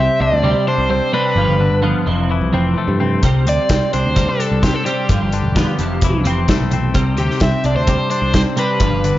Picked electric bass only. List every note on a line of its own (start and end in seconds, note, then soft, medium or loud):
0.20 0.31 C2 medium
0.32 0.53 D2 medium
0.78 1.00 C2 medium
1.36 1.47 G1 medium
1.48 1.70 G1 medium
1.71 1.93 G1 medium
2.07 2.39 F1 medium
2.41 2.52 C2 medium
2.53 2.74 F1 medium
2.88 3.20 G2 medium
3.23 3.47 C2 medium
3.47 3.57 D2 medium
3.70 3.80 C2 medium
3.94 4.04 C2 medium
4.06 4.26 D2 medium
4.52 4.73 C2 medium
5.09 5.20 G1 loud
5.21 5.42 G1 medium
5.43 5.65 E1 medium
5.79 6.11 F1 medium
6.14 6.24 C2 medium
6.25 6.46 F1 medium
6.60 6.92 B1 medium
6.95 7.17 C2 medium
7.17 7.29 D2 medium
7.41 7.52 C2 medium
7.64 7.74 C2 medium
7.75 7.97 D2 medium
8.22 8.44 C2 medium
8.80 8.91 G1 medium
8.92 9.14 G1 medium
9.15 9.18 G1 medium